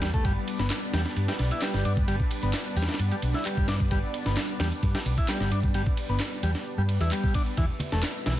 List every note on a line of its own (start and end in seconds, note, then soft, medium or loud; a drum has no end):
0.00 0.11 E2 medium
0.00 7.53 G3 medium
0.00 0.10 G3 medium
0.00 7.53 B3 medium
0.00 0.21 E4 medium
0.00 7.53 B4 medium
0.00 7.53 D5 medium
0.00 snare loud
0.00 closed hi-hat medium
0.00 ride medium
0.14 0.23 E1 medium
0.14 0.24 A3 loud
0.14 kick medium
0.14 closed hi-hat soft
0.25 0.35 G1 medium
0.25 0.32 G3 loud
0.25 7.53 D4 medium
0.25 kick loud
0.25 closed hi-hat soft
0.25 ride medium
0.48 closed hi-hat medium
0.48 ride medium
0.59 0.69 G1 medium
0.59 0.70 B3 medium
0.59 snare medium
0.59 closed hi-hat soft
0.70 snare loud
0.70 clap loud
0.70 closed hi-hat soft
0.70 open hi-hat medium
0.93 1.03 E2 medium
0.93 1.01 G3 loud
0.93 snare loud
0.93 closed hi-hat medium
0.93 ride medium
1.05 snare soft
1.05 closed hi-hat soft
1.05 ride soft
1.16 1.26 G2 loud
1.16 closed hi-hat soft
1.16 ride medium
1.28 1.33 G3 medium
1.28 snare loud
1.28 ride medium
1.39 1.49 B1 medium
1.39 snare medium
1.39 closed hi-hat medium
1.39 ride medium
1.51 1.62 E4 medium
1.51 closed hi-hat soft
1.51 ride medium
1.62 1.84 G3 medium
1.62 snare loud
1.62 clap loud
1.62 closed hi-hat soft
1.62 ride medium
1.74 1.83 G1 medium
1.74 snare medium
1.85 2.04 G2 medium
1.85 1.93 D4 medium
1.85 closed hi-hat medium
1.85 ride medium
1.97 kick loud
1.97 closed hi-hat soft
2.08 2.18 G1 loud
2.08 2.16 G3 loud
2.08 closed hi-hat soft
2.08 ride medium
2.20 kick medium
2.31 closed hi-hat medium
2.31 ride medium
2.43 2.52 G1 medium
2.43 2.53 B3 medium
2.43 closed hi-hat soft
2.54 snare loud
2.54 clap loud
2.54 closed hi-hat soft
2.54 ride medium
2.76 2.86 E2 medium
2.76 2.85 G3 loud
2.76 closed hi-hat medium
2.76 open hi-hat medium
2.76 ride medium
2.83 snare medium
2.83 open hi-hat medium
2.88 snare medium
2.88 closed hi-hat soft
2.88 open hi-hat medium
2.88 ride soft
2.94 snare medium
2.94 open hi-hat medium
2.99 3.09 G2 loud
2.99 closed hi-hat soft
2.99 ride medium
3.11 3.16 G3 medium
3.11 ride soft
3.22 3.32 B1 medium
3.22 closed hi-hat medium
3.22 ride medium
3.34 3.45 E4 medium
3.34 snare soft
3.34 closed hi-hat soft
3.45 3.67 G3 medium
3.45 clap loud
3.45 closed hi-hat soft
3.45 ride medium
3.57 3.66 G1 medium
3.57 kick loud
3.68 3.88 G2 medium
3.68 3.76 D4 medium
3.68 snare loud
3.68 closed hi-hat medium
3.68 ride medium
3.80 kick loud
3.80 closed hi-hat soft
3.91 4.01 G1 loud
3.91 3.99 G3 loud
3.91 kick loud
3.91 closed hi-hat soft
3.91 ride medium
4.14 closed hi-hat medium
4.14 ride medium
4.26 4.35 G1 medium
4.26 4.36 B3 medium
4.26 snare medium
4.26 closed hi-hat soft
4.37 snare loud
4.37 clap loud
4.37 closed hi-hat soft
4.37 open hi-hat medium
4.60 4.70 E2 medium
4.60 4.68 G3 loud
4.60 snare loud
4.60 closed hi-hat medium
4.60 open hi-hat medium
4.60 ride medium
4.72 closed hi-hat soft
4.72 ride medium
4.83 4.93 G2 loud
4.83 kick medium
4.83 closed hi-hat soft
4.83 ride medium
4.95 4.99 G3 medium
4.95 snare loud
4.95 open hi-hat medium
5.06 5.16 B1 medium
5.06 closed hi-hat medium
5.06 ride medium
5.18 5.28 E4 medium
5.18 kick medium
5.18 closed hi-hat soft
5.18 ride medium
5.28 5.51 G3 medium
5.28 snare loud
5.28 clap loud
5.28 closed hi-hat soft
5.28 ride medium
5.40 5.50 G1 medium
5.40 snare medium
5.51 5.71 G2 medium
5.51 5.59 D4 medium
5.51 closed hi-hat medium
5.51 ride medium
5.63 kick loud
5.63 closed hi-hat soft
5.74 5.84 G1 loud
5.74 5.82 G3 loud
5.74 closed hi-hat soft
5.74 ride medium
5.86 kick loud
5.97 closed hi-hat medium
5.97 ride medium
6.09 6.18 G1 medium
6.09 6.20 B3 medium
6.09 closed hi-hat soft
6.20 snare loud
6.20 clap loud
6.20 closed hi-hat soft
6.20 ride medium
6.43 6.53 E2 medium
6.43 6.51 G3 loud
6.43 closed hi-hat medium
6.43 ride medium
6.55 snare soft
6.55 closed hi-hat soft
6.55 ride medium
6.66 closed hi-hat soft
6.78 6.97 G2 loud
6.78 6.82 G3 medium
6.89 closed hi-hat medium
6.89 ride medium
7.00 7.10 E2 medium
7.00 7.11 E4 medium
7.00 snare soft
7.00 closed hi-hat soft
7.12 7.34 G3 medium
7.12 clap loud
7.12 closed hi-hat soft
7.12 ride medium
7.24 kick loud
7.34 7.43 D4 medium
7.34 kick loud
7.34 closed hi-hat medium
7.34 ride medium
7.46 closed hi-hat soft
7.57 7.68 E1 medium
7.57 7.65 E3 loud
7.57 8.40 G3 medium
7.57 8.40 B3 medium
7.57 8.40 E4 medium
7.57 8.40 B4 medium
7.57 8.40 E5 medium
7.57 kick loud
7.57 closed hi-hat soft
7.57 ride medium
7.80 closed hi-hat medium
7.80 ride medium
7.80 high conga medium
7.92 8.02 E1 medium
7.92 8.03 A3 medium
7.92 snare medium
7.92 closed hi-hat soft
8.03 snare loud
8.03 clap loud
8.03 closed hi-hat soft
8.03 open hi-hat medium
8.26 8.36 B1 medium
8.26 8.34 E3 loud
8.26 snare loud
8.26 closed hi-hat medium
8.26 ride medium